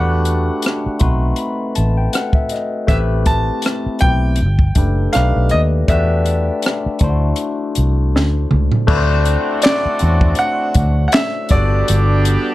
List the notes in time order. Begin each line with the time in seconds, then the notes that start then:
Already playing: E2 A3 D4 F#4 G4 B4 F#5
0.25 closed hi-hat
0.62 cross-stick, closed hi-hat
0.86 muted fingered electric bass stroke
0.99 B1 A3 C4 D#4 F#4 B4 C6, kick, closed hi-hat
1.36 B5, closed hi-hat
1.75 A1 A5, closed hi-hat
1.97 G5
2.13 F#5, cross-stick, closed hi-hat
2.33 E5, kick
2.49 D#5, closed hi-hat
2.54 cross-stick
2.87 A1 A3 C4 E4 G4 B4 E5, kick, closed hi-hat
3.26 A5, kick, closed hi-hat
3.62 cross-stick, closed hi-hat
3.86 muted fingered electric bass stroke
3.99 A3 C4 E4 G4 G5, kick, closed hi-hat
4.03 B1 B4
4.36 closed hi-hat
4.41 G1
4.59 kick
4.75 F#1 A3 D4 G4 A4 B4, kick, closed hi-hat
5.13 B1 A3 D4 D#4 G4 B4 F5, cross-stick, closed hi-hat
5.36 B1
5.49 D#5, closed hi-hat
5.53 D#2
5.88 E2 A3 D4 F#4 G4 B4 E5, kick, closed hi-hat
6.26 closed hi-hat
6.62 cross-stick, closed hi-hat
6.86 muted fingered electric bass stroke
6.99 D2 A3 D4 E4 F4, kick, closed hi-hat
7.04 C5
7.09 F#4
7.36 closed hi-hat
7.75 C2, closed hi-hat
8.15 D2, snare
8.51 C#2, mid tom
8.72 floor tom
8.87 D2 A3 C4 D4 E4 F#4 B4, kick, crash
8.97 C5
9.25 closed hi-hat
9.62 D5, snare, clap, closed hi-hat
9.86 muted fingered electric bass stroke
9.99 E2 A3 D4 E4 F#4 C#5, closed hi-hat
10.09 D5
10.21 kick
10.35 F#5, closed hi-hat
10.74 D2, kick, closed hi-hat
11.08 F#5
11.12 E5, snare, clap, closed hi-hat
11.49 G1 G3 B3 D4 F#4 G4 A4 D5, kick, closed hi-hat
11.88 G1, closed hi-hat
12.25 closed hi-hat